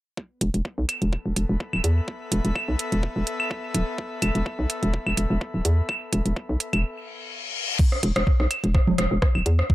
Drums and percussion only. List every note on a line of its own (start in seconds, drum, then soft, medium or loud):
0.17 kick loud
0.41 closed hi-hat medium
0.54 closed hi-hat soft
0.65 kick loud
0.89 closed hi-hat medium
0.89 claves soft
1.02 closed hi-hat soft
1.13 kick loud
1.36 closed hi-hat medium
1.60 kick loud
1.73 claves soft
1.84 closed hi-hat medium
2.08 kick loud
2.32 closed hi-hat medium
2.45 closed hi-hat soft
2.55 kick loud
2.55 claves soft
2.79 closed hi-hat medium
2.92 closed hi-hat soft
3.03 kick loud
3.27 closed hi-hat medium
3.40 claves soft
3.51 kick loud
3.74 closed hi-hat medium
3.98 kick loud
4.22 closed hi-hat medium
4.22 claves soft
4.35 closed hi-hat soft
4.46 kick loud
4.70 closed hi-hat medium
4.83 closed hi-hat soft
4.94 kick loud
5.07 claves soft
5.17 closed hi-hat medium
5.41 kick loud
5.65 closed hi-hat medium
5.89 kick loud
5.89 claves soft
6.13 closed hi-hat medium
6.26 closed hi-hat soft
6.36 kick loud
6.60 closed hi-hat medium
6.73 closed hi-hat soft
6.73 claves soft
7.79 kick loud
7.79 crash medium
7.92 cross-stick soft
8.03 closed hi-hat medium
8.16 cross-stick medium
8.16 closed hi-hat soft
8.27 kick loud
8.40 cross-stick soft
8.51 closed hi-hat medium
8.51 claves soft
8.64 closed hi-hat soft
8.75 kick loud
8.75 cross-stick soft
8.87 low conga loud
8.98 cross-stick medium
8.98 closed hi-hat medium
9.22 kick loud
9.22 cross-stick loud
9.22 cross-stick soft
9.35 claves soft
9.46 closed hi-hat medium
9.59 cross-stick soft
9.70 kick loud